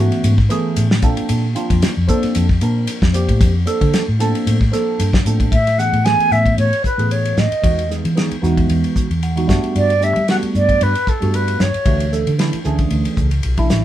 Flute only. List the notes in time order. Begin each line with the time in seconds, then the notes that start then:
5.52 E5
5.78 F#5
6.05 G#5
6.32 E5
6.59 C#5
6.85 B4
7.11 C#5
7.39 D#5
9.77 D5
10.03 E5
10.30 F#5
10.56 D5
10.83 B4
11.09 A4
11.35 B4
11.61 C#5